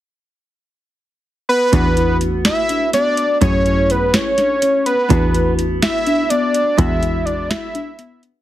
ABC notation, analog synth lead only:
X:1
M:7/8
L:1/8
Q:1/4=125
K:Emix
V:1 name="Analog synth lead"
z6 B- | B2 z e2 d2 | c2 B c3 B- | B2 z e2 d2 |
e2 d e3 z |]